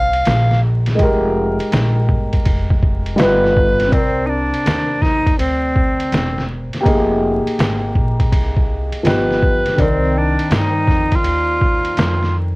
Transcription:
0.00 0.23 C2 medium
0.00 0.93 A#3 medium
0.00 0.95 C4 medium
0.00 0.96 D#4 medium
0.00 0.97 C5 medium
0.00 0.60 F5 loud
0.13 ride medium
0.25 0.96 A#1 medium
0.25 snare medium
0.25 hi-hat pedal medium
0.25 ride medium
0.51 snare soft
0.86 snare soft
0.86 ride medium
0.95 3.13 G#3 medium
0.95 3.14 D#4 medium
0.99 1.57 F1 loud
0.99 3.15 G4 medium
0.99 3.17 A#4 medium
0.99 kick medium
0.99 ride medium
1.60 muted upright bass stroke soft
1.60 ride medium
1.72 2.07 A#1 loud
1.72 snare loud
1.72 hi-hat pedal medium
1.72 ride medium
2.09 2.44 G1 medium
2.09 kick medium
2.33 kick medium
2.33 ride medium
2.45 3.15 F1 medium
2.45 kick medium
2.45 ride medium
2.70 kick medium
2.83 kick medium
3.06 ride medium
3.16 3.89 G1 loud
3.16 3.91 G3 medium
3.16 3.91 D#4 medium
3.16 3.92 F4 medium
3.16 3.92 B4 medium
3.16 snare loud
3.16 hi-hat pedal soft
3.16 ride medium
3.21 3.94 B4 medium
3.44 snare soft
3.57 kick loud
3.80 snare soft
3.80 ride medium
3.87 6.78 C3 medium
3.87 6.80 C4 medium
3.92 4.50 C2 medium
3.92 4.28 C4 medium
3.92 6.82 A#4 medium
3.92 6.81 D5 medium
3.92 kick loud
3.92 ride medium
4.26 5.03 D4 loud
4.26 4.30 D#4 medium
4.53 muted upright bass stroke soft
4.53 ride medium
4.66 5.35 D#2 medium
4.66 snare loud
4.66 hi-hat pedal medium
4.66 ride medium
5.02 5.38 D#4 loud
5.02 kick medium
5.02 snare soft
5.27 kick medium
5.27 ride medium
5.39 6.08 D2 medium
5.39 6.45 C4 medium
5.39 ride medium
5.76 kick medium
6.00 ride medium
6.12 6.69 E1 medium
6.12 snare loud
6.12 hi-hat pedal soft
6.12 ride medium
6.38 snare soft
6.73 muted upright bass stroke soft
6.73 snare soft
6.73 ride medium
6.81 8.99 A#3 medium
6.81 8.98 G4 medium
6.85 7.43 F1 loud
6.85 9.01 D#4 medium
6.85 9.02 G#4 medium
6.85 kick loud
6.85 ride medium
7.46 muted upright bass stroke soft
7.46 ride medium
7.59 7.93 G#1 loud
7.59 snare loud
7.59 hi-hat pedal medium
7.59 ride medium
7.95 8.30 A#1 medium
7.95 kick medium
8.20 kick medium
8.20 ride medium
8.32 8.89 C2 medium
8.32 kick medium
8.32 ride medium
8.57 kick medium
8.92 muted upright bass stroke soft
8.92 ride medium
9.03 9.62 G1 loud
9.03 9.77 F3 medium
9.03 9.78 B3 medium
9.03 9.78 D#4 medium
9.03 9.79 G4 medium
9.03 9.83 B4 medium
9.03 snare loud
9.03 hi-hat pedal medium
9.03 ride medium
9.31 snare soft
9.43 kick loud
9.65 muted upright bass stroke soft
9.65 snare soft
9.65 ride medium
9.75 10.35 C2 loud
9.75 9.85 D3 soft
9.75 12.56 C4 medium
9.75 kick loud
9.75 ride medium
9.79 12.56 D#3 medium
9.79 10.19 C4 loud
9.79 12.56 A#4 medium
9.79 12.56 D5 medium
10.18 10.53 D4 medium
10.38 muted upright bass stroke soft
10.38 ride medium
10.50 10.85 G2 medium
10.50 snare loud
10.50 hi-hat pedal medium
10.50 ride medium
10.55 11.17 D#4 medium
10.87 11.22 F2 medium
10.87 kick medium
10.87 snare soft
11.12 12.36 F4 loud
11.12 kick medium
11.12 ride medium
11.24 11.93 D#2 medium
11.24 ride medium
11.61 kick medium
11.85 ride medium
11.97 12.56 F2 loud
11.97 snare loud
11.97 hi-hat pedal medium
11.97 ride medium
12.23 snare soft

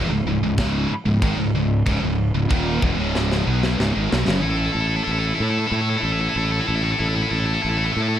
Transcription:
0.10 0.25 C#1 medium
0.10 0.26 C#2 medium
0.10 0.26 G#2 medium
0.26 0.41 C#1 medium
0.26 0.42 C#2 medium
0.26 0.42 G#2 medium
0.43 0.57 C#1 medium
0.43 0.58 C#2 medium
0.43 0.58 G#2 medium
0.58 0.88 C#1 loud
0.58 0.89 C#2 medium
0.58 0.90 G#2 loud
0.58 0.90 C#3 loud
0.58 kick loud
0.58 snare loud
0.58 crash medium
0.90 muted distorted electric guitar stroke medium
0.90 muted fingered electric bass stroke soft
1.06 1.21 C#1 medium
1.06 1.22 C#2 medium
1.06 1.21 G#2 medium
1.22 1.37 G#1 loud
1.22 1.37 G#2 medium
1.22 1.37 D#3 loud
1.22 kick loud
1.22 crash medium
1.37 1.53 C#1 medium
1.37 1.54 C#2 medium
1.37 1.54 G#2 medium
1.54 1.84 C#1 medium
1.54 1.80 C#2 medium
1.54 1.81 G#2 medium
1.86 2.01 C#1 medium
1.86 2.01 C#2 medium
1.86 2.02 G#2 loud
1.86 kick loud
1.86 crash medium
2.03 2.32 C#1 medium
2.03 2.28 C#2 medium
2.03 2.28 G#2 medium
2.35 2.50 C#1 medium
2.35 2.49 C#2 medium
2.35 2.49 G#2 medium
2.49 2.80 D#1 medium
2.49 2.81 D#2 medium
2.49 2.81 A#2 medium
2.49 2.81 D#3 loud
2.49 kick loud
2.49 crash medium
2.82 2.98 E1 loud
2.82 2.97 E2 medium
2.82 2.98 B2 loud
2.82 kick loud
2.98 3.43 C#1 medium
2.98 3.45 C#2 medium
2.98 3.46 G#2 loud
2.98 3.46 C#3 medium
3.15 snare medium
3.32 snare medium
3.46 3.77 B1 loud
3.46 3.77 B2 medium
3.46 3.78 F#3 medium
3.46 3.78 B3 loud
3.63 snare medium
3.78 3.94 C#1 medium
3.78 3.93 C#2 loud
3.78 3.92 G#2 loud
3.78 snare medium
3.93 4.11 G#1 medium
3.93 4.09 G#2 loud
3.93 4.10 D#3 loud
4.10 4.27 B1 loud
4.10 4.25 B2 medium
4.10 4.26 F#3 loud
4.10 snare loud
4.26 4.44 F#1 loud
4.26 4.41 F#2 loud
4.26 4.42 C#3 loud
4.26 snare medium
4.42 4.67 A1 medium
4.42 4.49 E4 medium
4.42 4.50 A4 medium
4.50 4.57 E4 medium
4.50 4.58 A4 medium
4.57 4.65 E4 medium
4.57 4.66 A4 medium
4.65 4.72 E4 medium
4.65 4.72 A4 medium
4.72 4.99 A1 medium
4.72 4.80 E4 medium
4.72 4.80 A4 medium
4.81 4.88 E4 medium
4.81 4.87 A4 medium
4.87 4.96 E4 medium
4.87 4.95 A4 medium
4.96 5.04 E4 medium
4.96 5.03 A4 medium
5.04 5.31 A1 medium
5.04 5.11 E4 medium
5.04 5.11 A4 medium
5.12 5.18 E4 medium
5.12 5.20 A4 medium
5.19 5.26 E4 medium
5.19 5.28 A4 medium
5.27 5.34 E4 medium
5.27 5.36 A4 medium
5.35 5.42 E4 medium
5.35 5.43 A4 medium
5.40 5.64 A2 medium
5.40 5.50 E4 medium
5.40 5.50 A4 medium
5.50 5.57 E4 medium
5.50 5.59 A4 medium
5.58 5.66 E4 medium
5.58 5.67 A4 medium
5.67 5.73 E4 medium
5.67 5.75 A4 medium
5.72 5.95 A2 loud
5.72 5.81 E4 medium
5.76 5.81 A4 medium
5.81 5.89 E4 medium
5.81 5.89 A4 medium
5.89 5.96 E4 medium
5.89 5.97 A4 medium
5.96 6.04 E4 medium
5.96 6.05 A4 medium
6.03 6.27 A1 loud
6.03 6.12 E4 medium
6.03 6.12 A4 medium
6.12 6.19 E4 medium
6.12 6.20 A4 medium
6.20 6.28 E4 medium
6.20 6.29 A4 medium
6.28 6.36 E4 medium
6.28 6.36 A4 medium
6.36 6.60 A1 medium
6.36 6.43 E4 medium
6.36 6.44 A4 medium
6.44 6.51 E4 medium
6.44 6.50 A4 medium
6.51 6.58 E4 medium
6.51 6.59 A4 medium
6.59 6.66 E4 medium
6.59 6.67 A4 medium
6.67 6.92 A1 loud
6.67 6.75 E4 medium
6.67 6.75 A4 medium
6.75 6.82 E4 medium
6.75 6.84 A4 medium
6.82 6.90 E4 medium
6.82 6.92 A4 medium
6.90 6.98 E4 medium
6.90 7.00 A4 medium
6.99 7.24 A1 medium
6.99 7.06 E4 medium
6.99 7.08 A4 medium
7.06 7.14 E4 medium
7.06 7.15 A4 medium
7.15 7.22 E4 medium
7.15 7.23 A4 medium
7.23 7.29 E4 medium
7.23 7.31 A4 medium
7.30 7.55 A1 medium
7.30 7.38 E4 medium
7.30 7.39 A4 medium
7.39 7.45 E4 medium
7.39 7.46 A4 medium
7.45 7.53 E4 medium
7.45 7.54 A4 medium
7.53 7.61 E4 medium
7.53 7.62 A4 medium
7.62 7.88 A1 medium
7.62 7.69 E4 medium
7.62 7.68 A4 medium
7.69 7.76 E4 medium
7.69 7.77 A4 medium
7.76 7.84 E4 medium
7.76 7.86 A4 medium
7.84 7.91 E4 medium
7.84 7.93 A4 medium
7.92 8.00 E4 medium
7.92 8.01 A4 medium
7.97 8.20 A2 medium
8.01 8.08 E4 medium
8.01 8.08 A4 medium
8.08 8.14 E4 medium
8.08 8.16 A4 medium
8.15 8.20 E4 medium

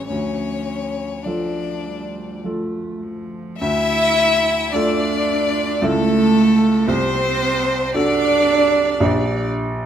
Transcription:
0.00 0.13 A1 soft
0.00 0.11 E3 medium
0.00 0.14 G3 soft
0.00 0.14 E4 soft
0.00 0.14 A4 soft
0.08 1.22 D2 soft
0.08 1.13 F3 soft
0.08 1.24 C#4 medium
0.08 1.26 C#5 medium
1.23 2.40 F3 soft
1.23 1.87 F3 soft
1.23 2.43 D4 soft
1.23 2.40 F4 soft
1.23 2.40 A4 soft
1.23 2.43 D5 soft
1.86 2.45 G3 soft
2.43 3.57 F3 soft
2.43 3.04 A3 soft
2.43 3.57 F4 soft
2.43 3.57 A4 soft
3.03 3.58 F3 medium
3.58 4.70 D2 medium
3.58 4.73 E4 loud
3.58 4.76 E5 loud
3.58 4.69 E5 loud
4.72 5.79 A3 medium
4.72 5.84 D4 medium
4.72 5.79 F4 medium
4.72 5.79 A4 medium
4.72 5.85 D5 medium
4.72 5.82 D5 medium
5.81 6.85 C#2 medium
5.81 6.84 A3 medium
5.81 6.89 A3 loud
5.81 6.84 E4 medium
5.81 6.90 A4 loud
5.81 6.89 A4 medium
5.81 6.85 A4 medium
6.88 7.91 C2 medium
6.88 7.97 C4 loud
6.88 7.94 C5 medium
6.88 7.93 C5 loud
7.94 8.95 D4 medium
7.94 9.52 D4 loud
7.94 8.96 F#4 medium
7.94 8.96 A4 medium
7.94 9.48 D5 medium
9.00 9.86 A#1 medium
9.00 9.86 D4 medium
9.00 9.86 G4 medium
9.00 9.86 D5 medium

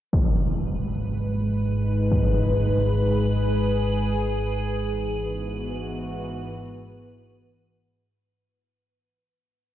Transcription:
0.11 8.22 G#1 medium
0.11 8.22 G#2 medium
0.11 4.13 G#3 medium
0.11 8.14 B4 medium
0.11 impact medium
1.10 5.74 B4 medium
1.44 4.13 D#4 medium
1.92 8.12 G#4 medium
2.11 impact soft
4.10 8.13 G#2 medium
4.10 5.58 G#4 loud
4.81 8.12 E3 medium
5.11 8.13 F#4 medium
5.21 8.13 B3 medium

